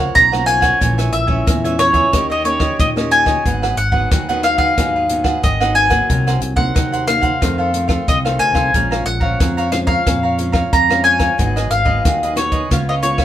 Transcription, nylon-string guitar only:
Already playing: F#2 F3 A#3 C#4
0.15 C#3
0.32 F3 A#3 C#4
0.81 A#2 E3 G#3 C#4
1.28 E3 G#3 C#4
1.47 A#2
1.64 E3 G#3 C#4
1.78 E3 G#3 C#4
2.13 D#3 A#3 C#4 G4
2.44 A#3 C#4 G4
2.79 A#2
2.96 A#3 C#4 G4
3.45 G#2 F#3 B3 D#4
3.92 F#3 B3 D#4
4.11 D#3
4.29 F#3 B3 D#4
4.78 G#2 F#3 B3 D#4
5.10 F#3 B3 D#4
5.44 D#3
5.61 F#3 B3 D#4
5.90 F#3 A#3 D#4
6.09 C3
6.56 F#3 A#3 D#4
6.75 C3
7.07 F#3 A#3 D#4
7.42 F2 D#3 A3 C4
7.73 D#3 A3 C4
8.07 C3
8.25 D#3 A3 C4
8.74 A#2 F3 G#3 C#4
9.21 F3 G#3 C#4
9.40 F2
9.72 F3 G#3 C#4
10.06 A#2
10.38 F3 G#3 C#4
10.72 F2
10.89 F3 G#3 C#4
11.38 G#2 F#3 B3 D#4
11.85 F#3 B3 D#4
12.05 D#3
12.36 F#3 B3 D#4
12.70 C#3 G#3 B3 F4
13.02 G#3 B3 F4

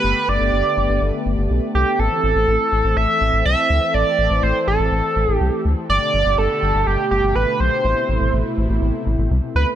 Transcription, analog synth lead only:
Already playing: B4
0.29 D5
1.75 G4
1.99 A4
2.97 E5
3.45 E5
3.94 D5
4.43 C5
4.68 A4
5.34 G4
5.90 D5
6.38 A4
6.87 G4
7.11 G4
7.35 B4
7.60 C5
9.56 B4

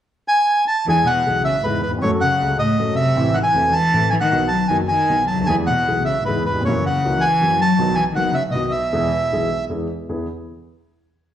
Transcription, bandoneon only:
0.28 G#5
0.68 A5
0.89 G#5
1.07 F#5
1.45 E5
1.64 B4
1.83 B4
2.02 C#5
2.21 F#5
2.59 D#5
2.96 E5
3.34 F#5
3.43 G#5
3.73 A5
4.10 G#5
4.21 F#5
4.48 A5
4.68 G#5
4.88 G#5
5.27 A5
5.46 G#5
5.67 F#5
6.05 E5
6.25 B4
6.46 B4
6.65 C#5
6.86 F#5
7.21 G#5
7.61 A5
7.95 G#5
8.16 F#5
8.34 E5
8.51 D#5
8.71 E5

